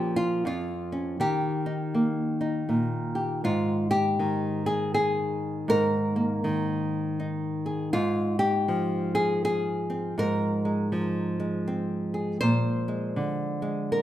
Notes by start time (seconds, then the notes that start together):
Already playing: A#2 F3 C#4 G4
0.16 F4
0.45 F2 F4
0.92 C#4
1.20 D#3 G4
1.66 D#4
1.94 A#3
2.41 D#4
2.69 A#2
3.15 G4
3.44 G#2 F4
3.91 G4
4.19 D#3
4.66 G#4
4.94 G#4
5.68 G#2 A#4
6.16 A#3
6.44 D#3
7.20 D#4
7.66 G#4
7.93 G#2 F4
8.39 G4
8.68 F3
9.15 G#4
9.45 G#4
9.90 C4
10.18 G#2 A#4
10.65 G#3
10.92 F3
11.40 G#3
11.67 C4
12.14 G#4
12.41 A#2 C5
12.88 G#3
13.16 D3
13.62 G#3
13.92 A#4